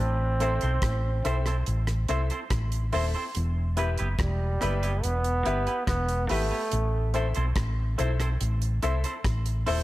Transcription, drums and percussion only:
0.40 closed hi-hat
0.61 closed hi-hat
0.82 kick, cross-stick, closed hi-hat
1.25 closed hi-hat
1.46 cross-stick, closed hi-hat
1.66 closed hi-hat
1.87 cross-stick, closed hi-hat
2.08 closed hi-hat
2.30 closed hi-hat
2.50 kick, cross-stick, closed hi-hat
2.72 closed hi-hat
2.93 open hi-hat
3.35 closed hi-hat
3.77 closed hi-hat
3.98 closed hi-hat
4.19 kick, cross-stick, closed hi-hat
4.61 cross-stick, closed hi-hat
4.83 closed hi-hat
5.04 closed hi-hat
5.24 closed hi-hat
5.46 closed hi-hat
5.67 closed hi-hat
5.87 kick, cross-stick, closed hi-hat
6.09 closed hi-hat
6.29 open hi-hat
6.71 closed hi-hat
7.14 closed hi-hat
7.35 closed hi-hat
7.56 kick, cross-stick, closed hi-hat
7.99 closed hi-hat
8.20 cross-stick, closed hi-hat
8.41 closed hi-hat
8.62 closed hi-hat
8.83 closed hi-hat
9.04 closed hi-hat
9.24 kick, cross-stick, closed hi-hat
9.46 closed hi-hat
9.67 open hi-hat

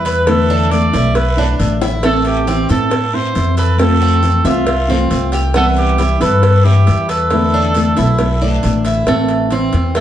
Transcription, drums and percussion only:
0.05 cowbell, short guiro
0.27 cowbell, long guiro
0.72 cowbell, short guiro
0.93 cowbell, short guiro
1.15 cowbell, long guiro
1.60 cowbell, short guiro
1.81 cowbell, high bongo, short guiro
2.03 cowbell, long guiro
2.25 cowbell
2.47 cowbell, short guiro
2.69 cowbell, short guiro
2.91 cowbell, long guiro
3.35 cowbell, short guiro
3.57 cowbell, short guiro
3.79 cowbell, long guiro
4.23 cowbell, short guiro
4.45 cowbell, short guiro
4.67 cowbell, long guiro
5.11 cowbell, short guiro
5.32 cowbell, short guiro
5.54 cowbell, long guiro
5.77 cowbell
5.98 cowbell, short guiro
6.21 cowbell, short guiro
6.43 cowbell, long guiro
6.87 cowbell, short guiro
7.09 cowbell, short guiro
7.31 cowbell, long guiro
7.74 cowbell, short guiro
7.97 cowbell, short guiro
8.19 cowbell, long guiro
8.63 cowbell, short guiro
8.85 cowbell, short guiro
9.07 cowbell
9.28 cowbell
9.51 cowbell
9.73 cowbell
9.95 cowbell

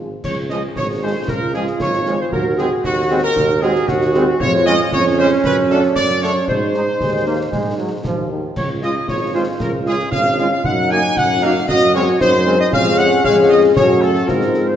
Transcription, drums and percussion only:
0.24 concert bass drum, crash
0.50 snare
0.76 concert bass drum, snare
1.28 concert bass drum, snare
1.54 snare
1.67 snare
1.80 concert bass drum, snare
1.93 snare
2.06 snare
2.32 concert bass drum
2.58 snare
2.84 concert bass drum, snare
3.36 concert bass drum, snare
3.63 snare
3.75 snare
3.88 concert bass drum, snare
4.01 snare
4.14 snare
4.40 concert bass drum, crash
4.66 snare
4.92 concert bass drum, snare
5.44 concert bass drum, snare
5.70 snare
5.83 snare
5.96 concert bass drum, snare
6.09 snare
6.22 snare
6.48 concert bass drum
6.74 snare
7.01 concert bass drum, snare
7.52 concert bass drum, snare
8.04 concert bass drum, snare
8.56 concert bass drum, crash
8.82 snare
9.08 concert bass drum, snare
9.60 concert bass drum, snare
9.86 snare
9.99 snare
10.12 concert bass drum, snare
10.25 snare
10.38 snare
10.64 concert bass drum
10.90 snare
11.16 concert bass drum, snare
11.68 concert bass drum, snare
11.94 snare
12.08 snare
12.21 concert bass drum, snare
12.34 snare
12.46 snare
12.73 concert bass drum, crash
12.99 snare
13.24 concert bass drum, snare
13.76 concert bass drum, snare
14.02 snare
14.16 snare
14.29 concert bass drum, snare
14.41 snare
14.54 snare

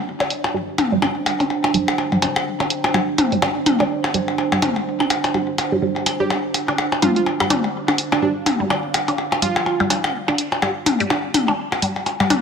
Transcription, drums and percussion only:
0.20 percussion blips
0.30 open hi-hat
0.44 percussion blips
0.78 open hi-hat, mid tom, percussion blips
1.02 percussion blips, claves
1.26 open hi-hat, percussion blips
1.40 open hi-hat, percussion blips
1.50 percussion blips
1.64 percussion blips
1.74 open hi-hat
1.88 percussion blips
1.98 percussion blips
2.12 percussion blips
2.22 open hi-hat, percussion blips
2.36 percussion blips, claves
2.60 percussion blips
2.70 open hi-hat
2.84 percussion blips
2.94 percussion blips
3.18 open hi-hat, mid tom, percussion blips
3.32 open hi-hat
3.42 percussion blips
3.66 open hi-hat, mid tom, percussion blips, claves
3.80 percussion blips
4.04 percussion blips
4.14 open hi-hat
4.28 percussion blips
4.38 percussion blips
4.52 percussion blips
4.62 open hi-hat, mid tom, percussion blips
4.76 percussion blips
5.00 claves, percussion blips
5.10 open hi-hat, percussion blips
5.24 open hi-hat, percussion blips
5.34 percussion blips
5.58 open hi-hat, percussion blips
5.96 percussion blips
6.06 open hi-hat, claves, percussion blips
6.30 percussion blips
6.54 open hi-hat, percussion blips
6.68 percussion blips
6.78 percussion blips
6.92 percussion blips
7.02 open hi-hat, mid tom, percussion blips
7.16 open hi-hat
7.26 percussion blips
7.40 percussion blips, claves
7.50 open hi-hat, mid tom, percussion blips
7.64 percussion blips
7.88 percussion blips
7.98 open hi-hat
8.12 percussion blips
8.46 open hi-hat, mid tom, percussion blips
8.70 percussion blips, claves
8.94 open hi-hat, percussion blips
9.08 open hi-hat, percussion blips
9.18 percussion blips
9.32 percussion blips
9.42 open hi-hat
9.56 percussion blips
9.66 percussion blips
9.80 percussion blips
9.90 open hi-hat, percussion blips
10.04 percussion blips, claves
10.28 percussion blips
10.38 open hi-hat
10.52 percussion blips
10.62 percussion blips
10.86 open hi-hat, mid tom, percussion blips
11.00 open hi-hat
11.10 percussion blips
11.34 open hi-hat, mid tom, percussion blips, claves
11.48 percussion blips
11.72 percussion blips
11.82 open hi-hat
11.96 percussion blips
12.06 open hi-hat, percussion blips
12.20 percussion blips
12.30 open hi-hat, mid tom, percussion blips

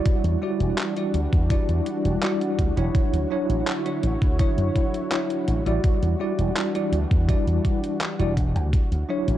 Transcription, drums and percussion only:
0.06 kick, closed hi-hat
0.24 closed hi-hat
0.60 closed hi-hat
0.78 clap, closed hi-hat
0.97 closed hi-hat
1.14 closed hi-hat
1.33 kick, closed hi-hat
1.50 kick, closed hi-hat
1.69 closed hi-hat
1.86 closed hi-hat
2.05 closed hi-hat
2.23 clap, closed hi-hat
2.41 closed hi-hat
2.59 kick, closed hi-hat
2.77 closed hi-hat
2.95 kick, closed hi-hat
3.14 closed hi-hat
3.50 closed hi-hat
3.67 clap, closed hi-hat
3.86 closed hi-hat
4.03 closed hi-hat
4.22 kick, closed hi-hat
4.39 kick, closed hi-hat
4.58 closed hi-hat
4.76 kick, closed hi-hat
4.94 closed hi-hat
5.12 clap, closed hi-hat
5.30 closed hi-hat
5.48 closed hi-hat
5.66 closed hi-hat
5.84 kick, closed hi-hat
6.03 closed hi-hat
6.39 closed hi-hat
6.56 clap, closed hi-hat
6.75 closed hi-hat
6.93 closed hi-hat
7.11 kick, closed hi-hat
7.29 kick, closed hi-hat
7.47 closed hi-hat
7.65 kick, closed hi-hat
7.84 closed hi-hat
8.01 clap, closed hi-hat
8.20 closed hi-hat
8.37 kick, closed hi-hat
8.56 closed hi-hat
8.73 kick, closed hi-hat
8.92 closed hi-hat
9.28 closed hi-hat

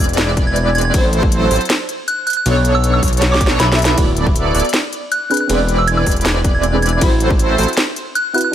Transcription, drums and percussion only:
0.04 closed hi-hat
0.09 closed hi-hat
0.13 closed hi-hat
0.18 snare, closed hi-hat, ride
0.37 kick, closed hi-hat
0.56 closed hi-hat
0.75 closed hi-hat
0.78 closed hi-hat
0.81 closed hi-hat
0.94 kick, closed hi-hat, ride
1.13 closed hi-hat
1.23 kick
1.32 closed hi-hat
1.51 open hi-hat
1.56 closed hi-hat
1.61 closed hi-hat
1.65 closed hi-hat
1.70 snare, closed hi-hat, ride
1.89 closed hi-hat
2.08 closed hi-hat
2.27 closed hi-hat
2.30 closed hi-hat
2.33 closed hi-hat
2.46 closed hi-hat, ride
2.65 closed hi-hat
2.84 closed hi-hat
2.94 high woodblock
3.03 kick, open hi-hat
3.08 closed hi-hat
3.13 closed hi-hat
3.17 closed hi-hat
3.22 snare, closed hi-hat, ride
3.34 snare
3.41 kick, closed hi-hat
3.47 snare
3.60 snare, closed hi-hat
3.72 snare
3.79 closed hi-hat
3.82 snare, closed hi-hat
3.85 closed hi-hat
3.98 kick, closed hi-hat, ride
4.17 closed hi-hat
4.27 kick
4.36 closed hi-hat
4.55 open hi-hat
4.60 closed hi-hat
4.65 closed hi-hat
4.69 closed hi-hat
4.74 snare, closed hi-hat, ride
4.93 closed hi-hat
5.12 closed hi-hat
5.31 closed hi-hat
5.34 closed hi-hat
5.37 closed hi-hat
5.50 closed hi-hat, ride
5.68 closed hi-hat
5.87 closed hi-hat
5.97 high woodblock
6.06 kick, open hi-hat
6.11 closed hi-hat
6.16 closed hi-hat
6.21 closed hi-hat
6.25 snare, closed hi-hat, ride
6.44 kick, closed hi-hat
6.63 closed hi-hat
6.82 closed hi-hat
6.86 closed hi-hat
6.89 closed hi-hat
7.01 kick, closed hi-hat, ride
7.20 closed hi-hat
7.30 kick
7.39 closed hi-hat
7.58 open hi-hat
7.63 closed hi-hat
7.68 closed hi-hat
7.73 closed hi-hat
7.77 snare, closed hi-hat, ride
7.96 closed hi-hat
8.15 closed hi-hat
8.34 closed hi-hat
8.38 closed hi-hat
8.41 closed hi-hat

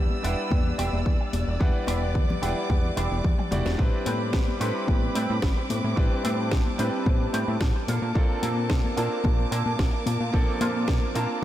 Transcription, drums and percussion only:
0.10 high conga
0.24 open hi-hat
0.51 kick, high conga
0.79 open hi-hat
0.93 high conga
1.06 kick
1.33 open hi-hat, high conga
1.61 kick
1.87 open hi-hat, high conga
2.15 kick
2.30 high conga, low conga
2.43 open hi-hat
2.70 kick, high conga
2.97 open hi-hat
3.12 high conga
3.24 kick, high tom
3.39 high tom
3.52 open hi-hat, mid tom, high conga
3.66 snare
3.79 kick
4.06 open hi-hat, high conga
4.33 kick, snare
4.48 high conga
4.61 open hi-hat
4.88 kick, high conga
5.15 open hi-hat
5.30 high conga
5.42 kick, snare
5.70 open hi-hat, high conga
5.97 kick
6.25 open hi-hat, high conga
6.51 kick, snare
6.66 high conga
6.79 open hi-hat
7.06 kick, high conga
7.34 open hi-hat
7.48 high conga
7.61 kick, snare
7.88 open hi-hat, high conga
8.15 kick
8.43 open hi-hat, high conga
8.70 kick, snare
8.85 high conga
8.97 open hi-hat
9.24 kick, high conga
9.52 open hi-hat
9.66 high conga
9.79 kick, snare
10.06 open hi-hat, high conga
10.34 kick
10.61 open hi-hat, high conga
10.88 kick, snare
11.02 high conga
11.15 open hi-hat

